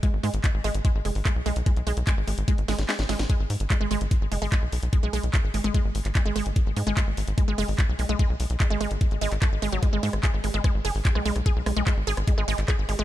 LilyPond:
<<
  \new Staff \with { instrumentName = "Synth arpeggio sound" } { \clef bass \time 4/4 \key gis \minor \tempo 4 = 147 gis16 r16 gis16 r16 gis16 r16 gis16 r16 gis16 r16 gis16 r16 gis16 r16 gis16 r16 | gis16 r16 gis16 r16 gis16 r16 gis16 r16 gis16 r16 gis16 r16 gis16 r16 gis16 r16 | gis16 r8. gis16 gis16 gis16 r8. gis16 gis16 gis16 r8. | gis16 gis16 gis16 r8. gis16 gis16 gis16 r8. gis16 gis16 gis16 r16 |
r8 gis16 gis16 gis16 r8. gis16 gis16 gis16 r8. gis16 gis16 | gis16 r8. gis16 gis16 gis16 r8. gis16 r16 a16 r16 gis16 fis16 | gis16 gis16 gis16 r16 gis'16 r16 gis16 gis16 gis16 r16 gis'16 r16 gis16 gis16 gis16 r16 | gis'16 r16 gis16 gis16 gis16 r16 gis'16 r16 gis16 gis16 gis16 r16 gis'16 r16 gis16 gis16 | }
  \new Staff \with { instrumentName = "Analog synth bass" } { \clef bass \time 4/4 \key gis \minor r16 gis,,16 gis,16 gis,,16 r16 gis,,16 gis,,16 gis,,16 r16 gis,,16 fis,,16 gis,,16 r16 b,,16 b,,16 b,,16 | r16 b,,16 b,,16 b,,16 r16 gis,,16 gis,,16 gis,,16 r16 gis,,16 gis,,16 gis,,16 r16 gis,,16 gis,,16 gis,,16 | r16 gis,,16 gis,16 gis,,16 r16 gis,,16 gis,,16 gis,,16 r16 gis,,16 fis,,16 gis,,16 r16 b,,16 b,,16 b,,16 | r16 b,,16 b,,16 b,,16 r16 gis,,16 gis,,16 gis,,16 r16 gis,,16 gis,,16 gis,,16 r16 gis,,16 gis,,16 gis,,16 |
r16 gis,,16 gis,16 gis,,16 r16 gis,,16 gis,,16 gis,,16 r16 gis,,16 fis,,16 gis,,16 r16 b,,16 b,,16 b,,16 | r16 b,,16 b,,16 b,,16 r16 gis,,16 gis,,16 gis,,16 r16 gis,,16 gis,,16 gis,,16 r16 gis,,16 gis,,16 gis,,16 | r16 gis,,16 gis,16 gis,,16 r16 gis,,16 gis,,16 gis,,16 r16 gis,,16 fis,,16 gis,,16 r16 b,,16 b,,16 b,,16 | r16 b,,16 b,,16 b,,16 r16 gis,,16 gis,,16 gis,,16 r16 gis,,16 gis,,16 gis,,16 r16 gis,,16 gis,,16 gis,,16 | }
  \new DrumStaff \with { instrumentName = "Drums" } \drummode { \time 4/4 <hh bd>8 hho16 hh16 <hc hh bd>8 hho16 hh16 <hh bd>8 hho16 hho16 <hc hh bd>8 hho16 hh16 | <hh bd>16 hh16 hho16 hh16 <hc hh bd>8 hho16 hh16 <hh bd>16 hh16 <hho sn>16 <hh sn>16 <hc hho sn>16 <hh sn>16 <hho sn>16 <hh sn>16 | <hh bd>8 hho16 hh16 <hc hh bd>8 hho16 hh16 <hh bd>8 hho16 hho16 <hc hh bd>8 hho16 hh16 | <hh bd>8 hho16 hh16 <hc hh bd>8 hho16 hh16 <hh bd>8 hho16 <hc hh>16 <hc hh bd>8 hho16 hh16 |
<hh bd>8 hho16 hh16 <hc hh bd>8 hho16 hh16 <hh bd>8 hho16 hho16 <hc hh bd>8 hho16 hh16 | <hh bd>8 hho16 hh16 <hc hh bd>8 hho16 hh16 <hh bd>16 hh16 hho16 <hc hh>16 <hc hh bd>8 hho16 hh16 | <hh bd ss>8 hho16 <hh ss>16 <hc hh bd>16 ss16 hho16 hh16 <hh bd ss>8 <hho ss>16 hho16 <hc hh bd>16 ss16 hho16 <hh ss>16 | <hh bd>8 <hho ss>16 hh16 <hc hh bd ss>8 hho16 <hh ss>16 <hh bd>16 ss16 hho16 <hc hh>16 <hc hh bd ss>8 <hho ss>16 hh16 | }
>>